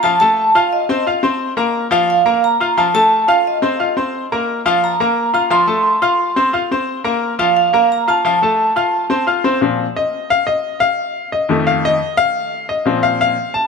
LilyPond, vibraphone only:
\new Staff \with { instrumentName = "Vibraphone" } { \time 4/4 \key f \phrygian \tempo 4 = 175 a''8 a''4 f''8 ees''4. r8 | r4. f''8 f''4 bes''4 | a''8 a''4 f''8 ees''4. r8 | r4. f''8 bes''4. bes''8 |
c'''2. r4 | r4. f''8 f''4 bes''8 a''8~ | a''2. r4 | r1 |
r1 | r1 | }